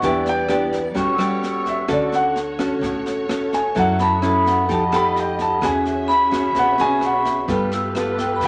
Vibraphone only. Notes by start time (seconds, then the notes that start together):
Already playing: C#6
0.97 C#6
1.14 E6
4.00 B5
4.16 D#6
4.46 F#5
6.08 B5
6.77 C#6
7.73 E6
8.20 G5
8.36 B5